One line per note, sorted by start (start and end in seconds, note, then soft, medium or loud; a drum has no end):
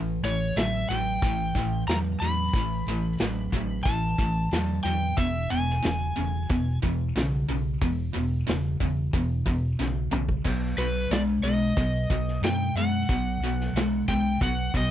0.00 0.18 A1 medium
0.00 0.21 A2 medium
0.00 0.21 E3 medium
0.23 0.51 A1 medium
0.23 0.54 A2 medium
0.23 0.54 E3 medium
0.23 0.58 C#5 medium
0.23 open hi-hat soft
0.56 0.84 A1 medium
0.56 0.87 A2 medium
0.56 0.87 F#3 medium
0.56 0.88 E5 medium
0.56 snare loud
0.56 open hi-hat medium
0.89 1.17 A1 medium
0.89 1.20 A2 medium
0.89 1.20 F#3 medium
0.89 1.84 G5 medium
0.89 open hi-hat soft
1.22 1.50 A1 medium
1.22 1.53 A2 medium
1.22 1.53 E3 medium
1.22 kick loud
1.22 open hi-hat medium
1.55 1.82 A1 medium
1.55 1.85 A2 medium
1.55 1.86 E3 medium
1.55 kick medium
1.55 open hi-hat soft
1.87 2.15 E2 medium
1.87 2.18 A2 medium
1.87 2.19 F#3 medium
1.87 1.97 A#5 medium
1.87 snare loud
1.87 open hi-hat medium
2.20 2.48 E2 medium
2.20 2.51 A2 medium
2.20 2.51 F#3 medium
2.20 3.83 B5 medium
2.20 open hi-hat soft
2.53 2.81 A1 medium
2.53 2.84 A2 medium
2.53 2.85 E3 medium
2.53 kick loud
2.53 open hi-hat medium
2.86 3.14 A1 medium
2.86 3.17 A2 medium
2.86 3.17 E3 medium
2.86 open hi-hat soft
3.18 3.47 A1 medium
3.18 3.50 A2 medium
3.18 3.50 F#3 medium
3.18 snare loud
3.18 open hi-hat medium
3.52 3.79 A1 medium
3.52 3.82 A2 medium
3.52 3.83 F#3 medium
3.52 kick medium
3.52 open hi-hat soft
3.83 4.13 A1 medium
3.83 4.15 A2 medium
3.83 4.15 E3 medium
3.83 4.79 A5 medium
3.83 kick loud
3.83 open hi-hat medium
4.18 4.46 A1 medium
4.18 4.48 A2 medium
4.18 4.49 E3 medium
4.18 kick medium
4.18 open hi-hat soft
4.51 4.79 E2 medium
4.51 4.82 A2 medium
4.51 4.82 F#3 medium
4.51 snare loud
4.51 open hi-hat medium
4.83 5.12 E2 medium
4.83 5.14 A2 medium
4.83 5.14 F#3 medium
4.83 5.18 G5 medium
4.83 open hi-hat soft
5.17 5.45 E1 medium
5.17 5.47 E2 medium
5.17 5.47 B2 medium
5.17 5.51 E5 medium
5.17 kick loud
5.17 open hi-hat medium
5.50 5.78 E1 medium
5.50 5.80 E2 medium
5.50 5.80 B2 medium
5.50 6.78 G#5 medium
5.50 open hi-hat soft
5.69 snare soft
5.83 6.11 E1 medium
5.83 6.13 E2 medium
5.83 6.13 C#3 medium
5.83 snare loud
5.83 open hi-hat medium
6.16 6.44 E1 medium
6.16 6.46 E2 medium
6.16 6.46 C#3 medium
6.16 open hi-hat soft
6.50 6.77 E1 medium
6.50 6.80 E2 medium
6.50 6.80 B2 medium
6.50 kick loud
6.50 open hi-hat medium
6.83 7.10 E1 medium
6.83 7.12 E2 medium
6.83 7.12 B2 medium
6.83 kick medium
6.83 open hi-hat soft
7.16 7.43 B1 medium
7.16 7.45 E2 medium
7.16 7.46 C#3 medium
7.16 snare loud
7.16 open hi-hat medium
7.49 7.76 B1 medium
7.49 7.78 E2 medium
7.49 7.78 C#3 medium
7.49 open hi-hat soft
7.81 8.09 E1 medium
7.81 8.11 E2 medium
7.81 8.11 B2 medium
7.81 kick medium
7.81 open hi-hat medium
8.14 8.42 E1 medium
8.14 8.44 E2 medium
8.14 8.44 B2 medium
8.14 open hi-hat soft
8.48 8.75 E1 medium
8.48 8.77 E2 medium
8.48 8.77 C#3 medium
8.48 snare loud
8.48 open hi-hat medium
8.80 9.08 E1 medium
8.80 9.10 E2 medium
8.80 9.11 C#3 medium
8.80 kick medium
8.80 open hi-hat soft
9.13 9.41 E1 medium
9.13 9.43 E2 medium
9.13 9.43 B2 medium
9.13 kick loud
9.13 open hi-hat medium
9.46 9.73 E1 medium
9.46 9.76 E2 medium
9.46 9.76 B2 medium
9.46 kick medium
9.46 open hi-hat medium
9.79 10.07 B1 medium
9.79 10.09 E2 medium
9.79 10.09 C#3 medium
9.79 snare medium
10.11 10.39 B1 medium
10.11 10.42 E2 medium
10.11 10.42 C#3 medium
10.11 mid tom medium
10.29 kick medium
10.45 10.72 B1 medium
10.45 10.75 B2 medium
10.45 10.75 F#3 medium
10.45 kick loud
10.45 open hi-hat medium
10.45 crash medium
10.77 11.05 B1 medium
10.77 11.08 B2 medium
10.77 11.08 F#3 medium
10.77 11.12 B4 medium
10.77 open hi-hat soft
11.10 11.38 B1 medium
11.10 11.41 B2 medium
11.10 11.41 G#3 medium
11.10 11.20 D5 medium
11.10 snare loud
11.10 open hi-hat medium
11.42 11.70 B1 medium
11.42 11.74 B2 medium
11.42 11.74 G#3 medium
11.42 12.44 D#5 medium
11.42 open hi-hat soft
11.76 12.04 B1 medium
11.76 12.07 B2 medium
11.76 12.07 F#3 medium
11.76 kick loud
11.76 open hi-hat medium
12.10 12.37 B1 medium
12.10 12.40 B2 medium
12.10 12.40 F#3 medium
12.10 kick medium
12.10 open hi-hat soft
12.28 snare soft
12.41 12.69 F#2 medium
12.41 12.73 B2 medium
12.41 12.73 G#3 medium
12.41 12.77 G5 loud
12.41 snare loud
12.41 open hi-hat medium
12.75 13.03 F#2 medium
12.75 13.06 B2 medium
12.75 13.06 G#3 medium
12.75 14.05 F#5 medium
12.75 open hi-hat soft
13.09 13.36 B1 medium
13.09 13.39 B2 medium
13.09 13.39 F#3 medium
13.09 kick loud
13.09 open hi-hat medium
13.40 13.68 B1 medium
13.40 13.72 B2 medium
13.40 open hi-hat soft
13.44 13.73 F#3 medium
13.60 snare soft
13.73 14.01 B1 medium
13.73 14.05 B2 medium
13.73 14.06 G#3 medium
13.73 open hi-hat medium
13.77 snare loud
14.08 14.35 B1 medium
14.08 14.38 B2 medium
14.08 14.38 G#3 medium
14.08 14.42 G5 loud
14.08 kick medium
14.08 open hi-hat soft
14.41 14.68 B1 medium
14.41 14.71 B2 medium
14.41 14.71 F#3 medium
14.41 14.72 F#5 medium
14.41 kick medium
14.41 open hi-hat medium
14.74 14.91 B1 medium
14.74 14.91 B2 medium
14.74 14.91 F#3 medium
14.74 14.91 D#5 medium
14.74 kick medium
14.74 open hi-hat medium